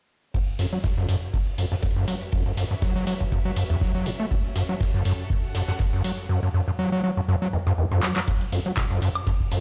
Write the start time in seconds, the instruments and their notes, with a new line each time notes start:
0.34 acid bass F#2, string section C#4, kick, ride
0.54 string section F#4
0.59 acid bass F#2, string section B4, snare, open hi-hat, ride
0.73 acid bass F#3
0.84 acid bass A2, kick, snare, ride
0.97 acid bass F#2, snare
1.09 acid bass F#2, open hi-hat, ride
1.29 string section E5
1.33 acid bass F#2, kick, ride
1.58 acid bass F#2, open hi-hat, ride
1.72 acid bass F#2, snare
1.82 acid bass F#2, kick, snare, ride
1.96 acid bass F#2
2.08 acid bass F#3, open hi-hat, ride
2.21 ride
2.32 acid bass F#2, kick, ride
2.46 acid bass F#2
2.57 acid bass F#2, snare, open hi-hat, ride
2.71 acid bass F#2
2.82 acid bass F#3, kick, snare, ride
2.96 acid bass F#3, snare
3.07 acid bass F#3, open hi-hat, ride
3.20 acid bass F#2, kick
3.32 acid bass F#2, kick, ride
3.45 acid bass F#3
3.56 acid bass F#2, open hi-hat, ride
3.70 acid bass E2
3.81 acid bass F#3, kick, snare, ride
3.95 acid bass F#3
4.06 acid bass F#2, open hi-hat, ride
4.20 acid bass A3
4.31 acid bass F#2, kick, ride
4.56 acid bass F#2, snare, open hi-hat, ride
4.65 string section A4
4.69 acid bass F#3
4.80 acid bass A2, kick, snare, ride
4.94 acid bass F#2, snare
5.05 acid bass F#2, open hi-hat, ride
5.22 string section F#5
5.30 acid bass F#2, kick, ride
5.55 acid bass F#2, snare, open hi-hat, ride
5.68 acid bass F#2, snare, ride
5.79 acid bass F#2, kick, snare, ride
5.93 acid bass F#2
6.04 acid bass F#3, open hi-hat, ride
6.18 ride
6.29 acid bass F#2
6.43 acid bass F#2
6.54 acid bass F#2
6.68 acid bass F#2
6.79 acid bass F#3
6.92 acid bass F#3
7.04 acid bass F#3
7.17 acid bass F#2
7.28 acid bass F#2
7.42 acid bass F#3
7.53 acid bass E2
7.67 acid bass F#2
7.78 acid bass E2
7.92 acid bass F#2
8.03 acid bass F#3, clap
8.16 acid bass F#3, clap
8.28 acid bass F#2, kick, closed hi-hat, ride
8.41 closed hi-hat
8.52 acid bass F#2, snare, open hi-hat, ride
8.66 acid bass F#3, closed hi-hat
8.77 acid bass A2, kick, snare, clap, closed hi-hat, ride
8.90 acid bass F#2, snare
9.02 acid bass F#2, open hi-hat, ride
9.15 closed hi-hat, high woodblock
9.27 acid bass F#2, kick, closed hi-hat, ride
9.40 kick
9.51 acid bass F#2, open hi-hat, ride